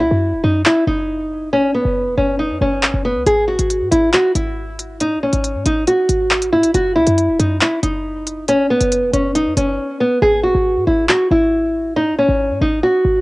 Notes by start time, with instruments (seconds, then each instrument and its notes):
0.00 808-style bass C#2, nylon-string guitar E4
0.11 808-style bass F#2
0.33 808-style bass E1
0.44 808-style bass F#2, nylon-string guitar D#4
0.66 nylon-string guitar E4, clap
0.87 808-style bass F#1, nylon-string guitar D#4
1.53 nylon-string guitar C#4
1.74 nylon-string guitar B3
1.85 808-style bass F#1
2.07 808-style bass E1
2.17 808-style bass F#1, nylon-string guitar C#4
2.39 nylon-string guitar D#4
2.50 808-style bass F#2
2.61 808-style bass F#1, nylon-string guitar C#4
2.83 808-style bass G#1, clap
2.94 808-style bass F#1
3.05 nylon-string guitar B3
3.16 808-style bass C#2
3.26 808-style bass G#1, nylon-string guitar G#4, closed hi-hat
3.48 nylon-string guitar F#4
3.59 808-style bass G#1, closed hi-hat
3.70 closed hi-hat
3.81 808-style bass G#2
3.91 808-style bass G#1, nylon-string guitar E4, closed hi-hat
4.13 nylon-string guitar F#4, clap, closed hi-hat
4.35 808-style bass G#1, nylon-string guitar E4, closed hi-hat
4.79 closed hi-hat
5.00 808-style bass G#2, nylon-string guitar D#4, closed hi-hat
5.17 808-style bass G#1
5.23 nylon-string guitar C#4
5.33 808-style bass G#1, closed hi-hat
5.44 closed hi-hat
5.55 808-style bass G#2
5.66 808-style bass G#1, nylon-string guitar D#4, closed hi-hat
5.87 nylon-string guitar F#4, closed hi-hat
6.09 808-style bass G#1, closed hi-hat
6.31 clap
6.42 closed hi-hat
6.53 808-style bass G#2, nylon-string guitar E4
6.63 808-style bass G#1, closed hi-hat
6.74 808-style bass F#1, nylon-string guitar F#4, closed hi-hat
6.96 808-style bass C#2, nylon-string guitar E4
7.07 808-style bass F#2, closed hi-hat
7.18 closed hi-hat
7.29 808-style bass E1
7.39 808-style bass F#2, nylon-string guitar D#4, closed hi-hat
7.61 nylon-string guitar E4, clap, closed hi-hat
7.83 808-style bass F#1, nylon-string guitar D#4, closed hi-hat
8.27 closed hi-hat
8.48 nylon-string guitar C#4, closed hi-hat
8.70 nylon-string guitar B3
8.81 808-style bass F#1, closed hi-hat
8.92 closed hi-hat
9.03 808-style bass E1
9.13 808-style bass F#1, nylon-string guitar C#4, closed hi-hat
9.35 nylon-string guitar D#4, closed hi-hat
9.46 808-style bass F#2
9.57 808-style bass F#1, nylon-string guitar C#4, closed hi-hat
10.00 nylon-string guitar B3
10.22 808-style bass G#1, nylon-string guitar G#4
10.43 nylon-string guitar F#4
10.55 808-style bass G#1
10.76 808-style bass G#2
10.87 808-style bass G#1, nylon-string guitar E4
11.09 nylon-string guitar F#4, clap
11.31 808-style bass G#1, nylon-string guitar E4
11.96 808-style bass G#2, nylon-string guitar D#4
12.12 808-style bass G#1
12.19 nylon-string guitar C#4
12.29 808-style bass G#1
12.50 808-style bass G#2
12.61 808-style bass G#1, nylon-string guitar D#4
12.83 nylon-string guitar F#4
13.05 808-style bass G#1